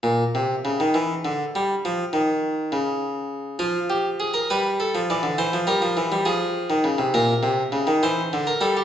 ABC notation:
X:1
M:6/8
L:1/16
Q:3/8=68
K:Fphr
V:1 name="Harpsichord"
B,,2 C,2 D, E, =E,2 =D,2 =G,2 | F,2 E,4 D,6 | F2 =G2 A B =B2 =A2 =d2 | c2 B4 A6 |
B6 c3 B =A =G |]
V:2 name="Harpsichord" clef=bass
z12 | z12 | F,6 =G,3 F, =E, =D, | =E, F, =G, F, E, G, F,3 _E, D, C, |
B,,2 C,2 D, E, =E,2 =D,2 =G,2 |]